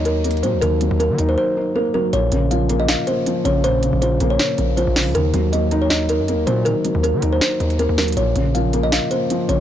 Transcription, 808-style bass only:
0.00 0.45 D#2 loud
0.43 0.55 A#2 loud
0.53 0.62 D#2 loud
0.62 0.90 D#2 loud
0.91 1.11 D#2 loud
1.10 1.18 D#3 loud
1.19 1.37 D#2 loud
2.13 2.31 A#1 loud
2.32 2.96 A#1 loud
3.45 3.91 A#1 loud
3.93 4.20 A#1 loud
4.21 4.39 A#1 loud
4.58 4.86 A#1 loud
4.87 5.08 A#1 loud
5.06 5.15 C#2 loud
5.15 5.33 D#2 loud
5.34 6.21 D#2 loud
6.19 6.35 F#2 loud
6.33 6.46 D#2 loud
6.47 6.75 A#2 loud
6.95 7.15 D#2 loud
7.14 7.22 D#3 loud
7.23 7.41 D#2 loud
7.60 7.88 D#2 loud
7.89 8.16 D#2 loud
8.17 8.35 A#1 loud
8.36 9.00 A#1 loud
9.49 9.60 A#1 loud

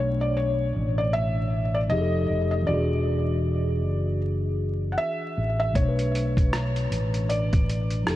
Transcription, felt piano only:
0.00 0.20 C#5 medium
0.21 0.37 D5 medium
0.37 1.00 C#5 medium
0.98 1.13 D5 medium
1.13 1.77 E5 loud
1.75 1.80 D5 medium
1.90 2.49 D#5 loud
2.51 2.68 D#5 medium
2.67 4.17 D5 medium
4.92 4.98 F#5 medium
4.98 5.58 E5 loud
5.60 5.76 E5 medium
5.75 7.34 C#5 loud
7.29 8.16 D5 medium

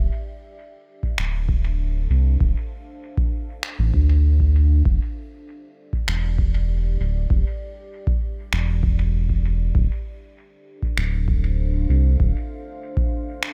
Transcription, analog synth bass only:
1.18 2.07 D1 medium
2.10 2.37 C2 medium
2.41 2.54 D1 medium
3.79 3.92 A1 medium
3.94 4.83 D2 medium
4.86 4.99 E1 medium
6.08 6.97 E1 medium
7.00 7.27 D1 medium
7.30 7.44 E1 loud
8.52 9.72 E1 medium
9.75 9.89 D1 medium
10.97 11.86 D1 medium
11.89 12.16 C2 medium
12.20 12.34 D1 loud

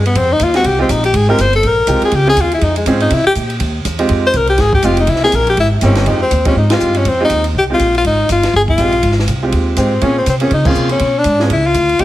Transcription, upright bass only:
0.00 0.14 G2 medium
0.15 0.39 F2 medium
0.40 0.64 D#2 medium
0.64 0.88 C2 medium
0.89 1.13 A#1 medium
1.14 1.38 G#1 medium
1.38 1.62 G1 medium
1.63 1.87 A#1 medium
1.87 2.01 C2 medium
2.01 muted upright bass stroke soft
2.12 2.36 C#2 medium
2.36 2.61 D#2 medium
2.61 2.85 F2 medium
2.86 3.10 G#2 loud
3.11 3.24 C3 medium
3.26 muted upright bass stroke soft
3.35 3.59 A#2 medium
3.60 3.84 D#2 medium
3.85 4.09 E2 medium
4.09 4.33 F2 medium
4.34 4.58 C2 medium
4.58 4.82 G#1 medium
4.83 5.07 F1 medium
5.08 5.32 C2 medium
5.32 5.56 A#1 loud
5.57 5.81 G#1 medium
5.82 6.05 G1 loud
6.06 6.30 F2 medium
6.31 6.55 D#2 medium
6.56 6.80 G#2 medium
6.81 7.05 G2 medium
7.05 7.29 F2 medium
7.30 7.54 D#2 medium
7.54 7.78 C2 medium
7.79 8.03 A#1 medium
8.05 8.28 G#1 medium
8.29 8.53 G1 medium
8.53 8.77 G1 medium
8.78 9.02 A#1 medium
9.03 9.27 G#1 medium
9.27 9.51 C2 medium
9.52 9.76 D#2 medium
9.77 10.01 G#2 medium
10.02 10.26 A#2 medium
10.26 10.50 C3 medium
10.51 10.74 C#3 medium
10.75 10.99 C3 medium
11.00 11.24 B2 medium
11.24 11.49 G#2 medium
11.49 11.73 C#2 medium
11.74 11.98 D2 medium
11.99 12.04 F2 medium

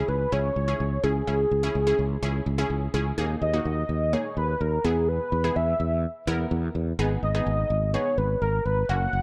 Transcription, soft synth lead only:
0.00 0.10 G#4 loud
0.09 0.34 B4 loud
0.32 1.05 C#5 loud
1.04 2.70 G#4 medium
3.42 4.15 D#5 loud
4.13 4.37 C#5 loud
4.37 4.62 B4 loud
4.61 4.86 A#4 loud
4.85 5.10 G#4 medium
5.09 5.58 B4 loud
5.56 6.04 E5 loud
7.23 7.90 D#5 loud
7.94 8.19 C#5 loud
8.18 8.41 B4 medium
8.42 8.64 A#4 loud
8.65 8.91 B4 medium
8.89 9.22 F#5 loud

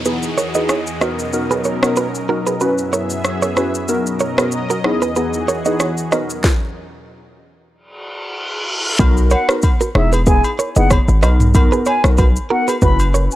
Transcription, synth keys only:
0.05 0.29 B3 medium
0.05 0.29 D#4 medium
0.05 0.30 E4 medium
0.05 0.30 G#4 medium
0.55 0.77 B3 medium
0.55 0.77 D#4 medium
0.55 0.77 E4 medium
0.55 0.77 G#4 medium
1.01 1.25 B3 medium
1.01 1.25 D#4 medium
1.01 1.25 F#4 medium
1.01 1.25 A#4 medium
1.33 1.78 B3 medium
1.33 1.79 D#4 medium
1.33 1.79 F#4 medium
1.33 1.79 A#4 loud
1.83 2.05 B3 medium
1.83 2.05 D#4 medium
1.83 2.05 F#4 medium
1.83 2.05 A#4 medium
2.29 2.53 B3 medium
2.29 2.53 D#4 medium
2.29 2.53 F#4 medium
2.29 2.53 A#4 medium
2.61 3.50 C#4 medium
2.61 3.50 E4 medium
2.61 3.50 F#4 medium
2.61 3.50 B4 medium
3.56 3.86 C#4 medium
3.56 3.86 E4 medium
3.56 3.86 F#4 medium
3.56 3.87 B4 medium
3.88 4.34 B3 medium
3.88 4.34 D#4 medium
3.88 4.34 F#4 medium
3.88 4.34 A#4 loud
4.38 4.60 B3 medium
4.38 4.60 D#4 medium
4.38 4.60 F#4 medium
4.38 4.60 A#4 medium
4.84 5.08 B3 medium
4.84 5.08 D#4 medium
4.84 5.08 E4 medium
4.84 5.08 G#4 medium
5.16 5.40 B3 medium
5.16 5.40 D#4 medium
5.16 5.40 E4 medium
5.16 5.40 G#4 medium
5.66 5.88 B3 medium
5.66 5.88 D#4 medium
5.66 5.88 E4 medium
5.66 5.88 G#4 medium
6.12 6.36 B3 medium
6.12 6.36 D#4 medium
6.12 6.36 F#4 medium
6.12 6.36 A#4 medium
8.99 9.44 B3 medium
8.99 9.45 D#4 medium
8.99 9.45 F#4 medium
8.99 9.45 A#4 loud
9.49 9.71 B3 medium
9.49 9.71 D#4 medium
9.49 9.71 F#4 medium
9.49 9.71 A#4 medium
9.95 10.19 B3 medium
9.95 10.19 D#4 medium
9.95 10.19 E4 medium
9.95 10.19 G#4 medium
10.27 10.51 B3 medium
10.27 10.51 D#4 medium
10.27 10.51 E4 medium
10.27 10.51 G#4 loud
10.76 10.98 B3 medium
10.76 10.98 D#4 medium
10.76 10.99 E4 medium
10.76 10.99 G#4 medium
11.22 11.46 B3 medium
11.22 11.47 D#4 medium
11.22 11.47 F#4 medium
11.22 11.47 A#4 medium
11.54 12.00 B3 loud
11.54 12.00 D#4 medium
11.54 12.00 F#4 medium
11.54 12.00 A#4 loud
12.04 12.26 B3 medium
12.04 12.26 D#4 medium
12.04 12.26 F#4 medium
12.04 12.26 A#4 medium
12.50 12.74 B3 medium
12.50 12.74 D#4 medium
12.50 12.74 F#4 medium
12.50 12.74 A#4 medium
12.82 13.36 C#4 medium
12.82 13.36 E4 medium
12.82 13.36 F#4 medium
12.82 13.36 B4 loud

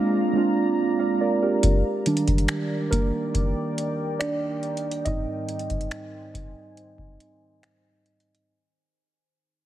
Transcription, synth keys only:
0.00 0.33 G#3 medium
0.00 0.34 A#3 medium
0.00 0.35 C4 medium
0.00 0.36 D4 medium
0.00 0.37 F4 loud
0.33 1.10 G#3 medium
0.33 1.10 A#3 medium
0.33 1.11 C4 medium
0.33 1.11 D4 medium
0.37 1.12 F4 loud
0.99 1.20 D5 medium
0.99 1.19 F5 medium
1.21 1.41 A#4 medium
1.21 1.41 D5 medium
1.42 1.83 G4 medium
1.42 1.83 A#4 medium
2.06 3.30 D#3 medium
2.06 3.31 G3 medium
2.06 3.31 D4 medium
2.91 4.17 A#3 medium
2.91 4.16 A#4 medium
4.19 5.02 D4 medium
4.19 5.08 D5 loud
5.05 8.45 G#2 soft
5.05 8.45 G3 soft
5.05 8.45 C4 medium
5.05 7.60 D#4 medium
5.05 7.59 D#5 medium

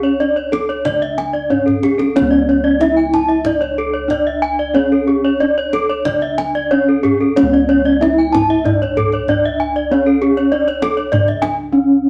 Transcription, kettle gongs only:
0.00 0.84 C#2 medium
0.00 1.46 C#4 medium
0.21 0.29 D4 soft
0.86 2.78 C#3 medium
1.51 1.59 D4 soft
2.16 4.08 C#4 medium
2.21 6.06 C#2 medium
2.81 2.89 D4 soft
4.11 4.19 D4 soft
4.76 6.68 C#4 medium
5.42 5.50 D4 soft
6.06 7.98 C#3 medium
6.72 6.80 D4 soft
7.37 9.25 C#4 medium
7.42 11.11 C#2 medium
8.02 8.10 D4 soft
9.30 9.38 D4 soft
9.91 11.68 C#4 medium
10.52 10.60 D4 soft
11.13 12.10 C#3 medium
11.72 11.80 D4 soft

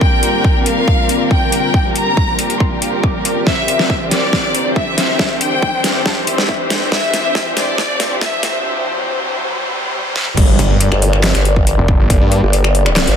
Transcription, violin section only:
0.01 0.58 G5 loud
0.66 1.23 F5 loud
1.31 1.87 G5 loud
1.95 2.52 A#5 loud
2.60 2.89 C6 medium
3.03 3.32 D6 medium
3.47 4.03 E5 loud
4.11 4.68 D5 loud
4.76 5.33 E5 loud
5.41 5.97 G5 medium
6.06 6.34 A5 medium
6.49 6.77 E5 medium
6.92 7.48 E5 loud
7.57 8.13 D5 loud
8.21 8.65 E5 loud

